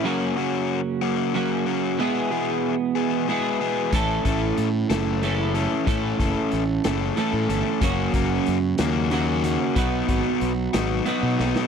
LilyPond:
<<
  \new Staff \with { instrumentName = "Overdriven electric guitar" } { \time 6/8 \key a \lydian \tempo 4. = 62 <fis ais cis' fis'>8 <fis ais cis' fis'>8 r8 <fis ais cis' fis'>8 <fis ais cis' fis'>8 <fis ais cis' fis'>8 | <e gis b gis'>8 <e gis b gis'>8 r8 <e gis b gis'>8 <e gis b gis'>8 <e gis b gis'>8 | <e a cis' a'>8 <e a cis' a'>8 r8 <e a cis' a'>8 <e a cis' a'>8 <e a cis' a'>8 | <e a cis' a'>8 <e a cis' a'>8 r8 <e a cis' a'>8 <e a cis' a'>8 <e a cis' a'>8 |
<fis ais cis' fis'>8 <fis ais cis' fis'>8 r8 <fis ais cis' fis'>8 <fis ais cis' fis'>8 <fis ais cis' fis'>8 | <fis b dis' fis'>8 <fis b dis' fis'>8 r8 <fis b dis' fis'>8 <fis b dis' fis'>8 <fis b dis' fis'>8 | }
  \new Staff \with { instrumentName = "Clean electric guitar" } { \time 6/8 \key a \lydian <fis, cis fis ais cis' fis'>2 <fis, cis fis ais cis' fis'>4 | <e, b, e gis b gis'>2 <e, b, e gis b gis'>4 | <a, e a cis' a'>2 <a, e a cis' a'>4 | <a, e a cis' a'>2 <a, e a cis' a'>4 |
<fis, cis fis ais cis' fis'>2 <fis, cis fis ais cis' fis'>4 | <b, fis b dis' fis'>2 <b, fis b dis' fis'>4 | }
  \new Staff \with { instrumentName = "Fingered electric bass" } { \clef bass \time 6/8 \key a \lydian r2. | r2. | a,,8 a,,8 a,8 fis,,4. | a,8 fis,,16 r16 a,,8 fis,,8 r16 a,16 g,,16 r16 |
fis,,8 fis,,8 fis,8 dis,4. | b,,8 gis,,16 r16 b,,8 gis,,8 r16 b,16 b,,16 r16 | }
  \new DrumStaff \with { instrumentName = "Drums" } \drummode { \time 6/8 r4. r4. | r4. r4. | <hh bd>8 <hh bd>8 hh8 <hh sn>8 hh8 hh8 | <hh bd>8 <hh bd>8 hh8 <hh sn>8 hh8 hh8 |
<hh bd>8 <hh bd>8 hh8 <hh sn>8 hh8 hh8 | <hh bd>8 <hh bd>8 hh8 <hh sn>8 hh8 sn16 sn16 | }
>>